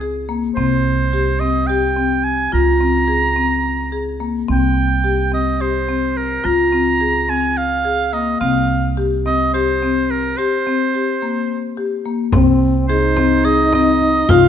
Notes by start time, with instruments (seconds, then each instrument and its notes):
Already playing: upright bass C#2, oboe G#4
0.01 marimba G#4
0.29 marimba A#3
0.55 upright bass C2, marimba C4, oboe C5
1.13 marimba G4
1.40 marimba C4, oboe D#5
1.67 marimba G4, oboe G5
1.97 marimba C4
2.24 oboe G#5
2.52 upright bass C#2, marimba F4, oboe A#5
2.81 marimba C4
3.08 marimba G#4
3.36 marimba C4
3.92 marimba G#4
4.20 marimba A#3
4.48 upright bass C2, marimba C4, oboe G5
5.04 marimba G4
5.32 marimba C4, oboe D#5
5.60 marimba G4, oboe C5
5.89 marimba C4
6.17 oboe A#4
6.44 upright bass C#2, marimba F4, oboe A#5
6.72 marimba C4
7.01 marimba G#4
7.29 marimba C4, oboe G#5
7.57 oboe F5
7.85 marimba G#4
8.13 marimba A#3, oboe D#5
8.40 upright bass C2, marimba C4, oboe F5
8.97 marimba G4
9.26 marimba C4, oboe D#5
9.54 marimba G4, oboe C5
9.82 marimba C4
10.11 oboe A#4
10.37 marimba G4, oboe C5
10.67 marimba C4
10.94 marimba G4
11.22 marimba A#3
11.77 marimba G4
12.05 marimba A#3
12.32 upright bass C2, marimba C4, french horn C4, frame drum
12.88 french horn D#4, marimba G#4, oboe C5, frame drum
13.17 marimba C4, frame drum
13.45 marimba G#4, oboe D#5, frame drum
13.73 marimba C4, oboe D#5, frame drum
14.01 frame drum
14.28 upright bass C2, french horn F4, marimba F4, oboe F5, frame drum